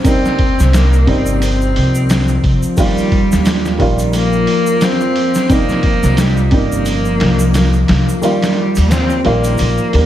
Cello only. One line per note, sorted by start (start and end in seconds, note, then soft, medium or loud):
0.08 0.70 C4 loud
0.75 1.11 A#3 medium
1.09 1.42 C4 medium
1.43 2.40 C4 medium
2.79 3.76 G3 loud
4.17 4.86 A#3 loud
4.85 5.55 C4 loud
5.54 6.23 A#3 loud
6.22 6.56 G3 medium
6.54 7.90 A#3 medium
8.24 8.93 G3 loud
8.91 9.25 C4 loud
9.26 10.06 A#3 loud